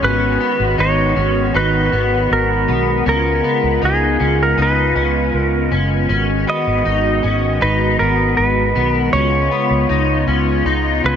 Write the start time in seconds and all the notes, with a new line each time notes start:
Already playing: B3
0.02 G#1 D#3 G#3 C#4 F#4 B4
0.40 B3
0.59 G#1
0.78 G#1 D#4 C#5
1.16 G#1 C#4
1.54 G#1 D#4 B4
1.92 G#1 B3
2.31 G#1 A#4
2.68 B1 B3
3.06 C#2 C#3 C#4 F4 A#4
3.44 B3
3.63 C#2
3.82 C#2 D#4 G#4
4.20 C#2 C#4
4.43 A#4
4.58 C#2 D#4
4.62 B4
4.95 C#2 C#4
5.34 C#2 A#4
5.71 F#1 C#4
6.09 G#1 D#3 B3 C#4 F#4
6.47 B3 D#5
6.67 G#1
6.85 G#1 D#4
7.23 G#1 C#4
7.61 G#1 D#4 B4
7.99 G#1 B3 A#4
8.37 G#1 B4
8.75 B1 B3
8.92 A#4
9.13 C#2 C#3 C#4 F4 C#5
9.51 B3
9.70 C#2
9.89 C#2 D#4
10.27 C#2 C#4
10.65 C#2 D#4
11.04 C#2 C#4 B4